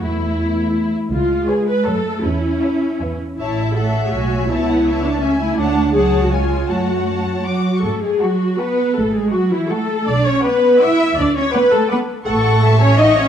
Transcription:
<<
  \new Staff \with { instrumentName = "Violin section" } { \time 3/4 \key a \major \tempo 4 = 163 e'2~ e'8 r8 | r4 gis''4 a''4 | r4 a''4 gis''4 | a''4 fis''4 gis''4 |
a''4 a''4 gis''4 | \key fis \minor a''4 a''4 gis''4 | a''4 a''4 d'''8. cis'''16 | r4 cis'''4 cis'''4 |
r4 cis'''4 cis'''4 | r4 d'''4 d'''4 | r4 d'''4 d'''4 | \key fis \dorian cis'''2 cis'''4 | }
  \new Staff \with { instrumentName = "Violin section" } { \time 3/4 \key a \major << { e'2~ e'8 r8 | r4 cis''4 cis''4 | r4 e''4 e''4 | e''4 cis''2 |
e''8 fis''8 e''4 e''4 | \key fis \minor fis''4 fis''4 gis''4 | fis''2~ fis''8 r8 | r4 a''4 a''4 |
r4 cis'''4 cis'''4 | r4 b''4 b''4 | r4 b''4 b''4 | \key fis \dorian fis''4 a''8 gis''8 fis''4 | } \\ { r2. | r4 b'4 cis''4 | r4 cis''4 b'4 | cis''8 e''8 e''2 |
cis''4 cis''4 e''4 | cis''4 cis''4 cis''4 | cis''2~ cis''8 r8 | r4 fis''4 fis''4 |
r4 fis''4 fis''4 | r4 fis''4 fis''4 | r4 fis''4 fis''4 | fis''8 fis''8 e''2 | } >> }
  \new Staff \with { instrumentName = "Viola section" } { \time 3/4 \key a \major e'2~ e'8 r8 | eis'4 gis'8 b'8 a'4 | e'2~ e'8 r8 | e'4 a'8. gis'16 fis'4 |
e'4. d'8 cis'8 e'8 | \key fis \minor d'4 gis'8. fis'16 eis'4 | fis'2 fis'4 | a'8 gis'8 fis'4 b'4 |
a'8 gis'8 fis'8 e'8 a'4 | d''8 cis''8 b'4 e''4 | d''8 cis''8 b'8 a'8 b'8 r8 | \key fis \dorian a'4. cis''8 dis''8 cis''8 | }
  \new Staff \with { instrumentName = "Cello section" } { \time 3/4 \key a \major a2. | gis2 a4 | cis'2~ cis'8 r8 | r4 a2 |
b2 a4~ | \key fis \minor a4 fis4 gis4 | a2 fis4 | a8 gis8 fis4 b4 |
a8 gis8 fis8 e8 a4 | d'8 cis'8 b4 e'4 | d'8 cis'8 b8 a8 b8 r8 | \key fis \dorian a4. cis'8 dis'8 cis'8 | }
  \new Staff \with { instrumentName = "Double bass section" } { \clef bass \time 3/4 \key a \major e,2~ e,8 r8 | cis,4 r4 fis,4 | e,4 r4 e,4 | a,,2 b,,4 |
cis,2. | \key fis \minor d,4 cis,2 | fis,2~ fis,8 r8 | fis,4 r2 |
a,,4 r2 | b,,4 r2 | d,4 r2 | \key fis \dorian a,,2. | }
>>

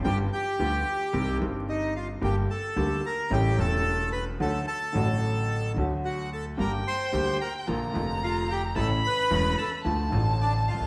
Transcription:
<<
  \new Staff \with { instrumentName = "Violin" } { \time 4/4 \key g \minor \tempo 4 = 110 r1 | r1 | r1 | g''2 bes''2 |
b''2 a''2 | }
  \new Staff \with { instrumentName = "Bandoneon" } { \time 4/4 \key g \minor <g' g''>8 <g' g''>2 r8 <ees' ees''>8 <f' f''>8 | <g' g''>8 <a' a''>4 <bes' bes''>8 <g' g''>8 <a' a''>4 <b' b''>8 | <a' a''>8 <a' a''>2 r8 <fis' fis''>8 <a' a''>8 | <bes' bes''>8 <c'' c'''>4 <bes' bes''>8 r4 <f' f''>8 <g' g''>8 |
<a' a''>8 <b' b''>4 <a' a''>8 r4 <d' d''>8 <f' f''>8 | }
  \new Staff \with { instrumentName = "Grand piano" } { \clef bass \time 4/4 \key g \minor << { <g,, g, d g b f'>8 r8 <d, d g b f'>8 r8 <c, c ees g c' g'>8 <g,, g, ees g c' g'>4. | <g,, g, d g bes g'>8 r8 <d, d g bes g'>8 r8 <a,, a, cis g a e'>8 <e,, e, cis g a e'>4. | <d, d fis a fis'>8 r8 <a,, a, d fis a fis'>4. <d, d fis a fis'>4. | <g,, g, d g bes g'>8 r8 <d, d g bes g'>8 r8 <bes,, bes, d f bes f'>8 <f,, f, d f bes f'>4. |
<a,, a, cis e a e'>8 r8 <e,, e, cis e a e'>8 r8 <d, d f a f'>8 <a,, a, d f a f'>4. | } \\ { r1 | r1 | r1 | r1 |
r2. r8 r32 c,32 cis,32 r32 | } >> }
  \new Staff \with { instrumentName = "Upright bass" } { \clef bass \time 4/4 \key g \minor g,,16. r8 r32 d,16. r8 r32 c,16. r32 g,,4~ g,,16. r32 | g,,16. r8 r32 d,16. r8 r32 a,,16. r32 e,,4~ e,,16. r32 | d,16. r8 r32 a,,4~ a,,16. r32 d,4~ d,16. r32 | g,,16. r8 r32 d,16. r8 r32 bes,,16. r32 f,,4~ f,,16. r32 |
a,,16. r8 r32 e,,16. r8 r32 d,16. r32 a,,4~ a,,32 c,32 cis,32 r32 | }
>>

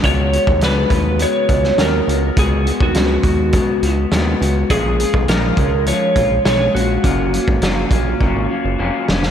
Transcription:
<<
  \new Staff \with { instrumentName = "Electric slide guitar" } { \time 4/4 \key cis \mixolydian \tempo 4 = 103 cis''4 b'4 cis''4 ais'4 | gis'8. fis'2 r4 r16 | gis'4 ais'4 cis''4 cis''8 fis'8~ | fis'2.~ fis'8 r8 | }
  \new Staff \with { instrumentName = "Clean electric guitar" } { \time 4/4 \key cis \mixolydian <cis gis b fis'>8 <gis b fis'>8 <cis gis b fis'>8 <gis b fis'>8 <cis gis b fis'>8 <gis b fis'>8 <cis gis b fis'>8 <gis b fis'>8 | <cis gis b fis'>8 <gis b fis'>8 <cis gis b fis'>8 <gis b fis'>8 <cis gis b fis'>8 <gis b fis'>8 <cis gis b fis'>8 <gis b fis'>8 | <ais, eis gis cis' eis'>8 <gis cis' eis'>8 <ais, eis gis cis' eis'>8 <gis cis' eis'>8 <eis gis cis' eis'>8 <gis cis' eis'>8 <ais, eis gis cis' eis'>8 <gis cis' eis'>8 | <fis ais cis' eis'>8 <ais cis' eis'>8 <fis ais cis' eis'>8 <ais cis' eis'>8 <fis ais cis' eis'>8 <ais cis' eis'>8 <fis ais cis' eis'>8 <ais cis' eis'>8 | }
  \new Staff \with { instrumentName = "Analog synth bass" } { \clef bass \time 4/4 \key cis \mixolydian cis,8. dis,16 cis,8 dis,8. r16 cis,8 dis,8 cis,8 | cis,8. dis,16 cis,8 dis,8. r16 cis,8 dis,8 cis,8 | ais,,8. b,,16 ais,,8 cis,8. r16 ais,,8 b,,8 ais,,8 | fis,,8. gis,,16 fis,,8 ais,,8 fis,,16 gis,,16 r16 fis,,16 eis,,16 r16 eis,,8 | }
  \new DrumStaff \with { instrumentName = "Drums" } \drummode { \time 4/4 <hh bd>8 hh16 bd16 <hh sn>8 <hh bd>8 hh8 <hh bd>16 sn16 <hh sn>8 hh8 | <hh bd>8 hh16 bd16 <hh sn>8 <hh bd>8 <hh bd>8 hh8 <hh sn>8 hh8 | <hh bd>8 hh16 bd16 <hh sn>8 <hh bd>8 hh8 <hh bd>8 <hh sn>8 hh8 | <hh bd>8 hh16 bd16 <hh sn>8 <hh bd>8 bd4 r8 sn16 sn16 | }
>>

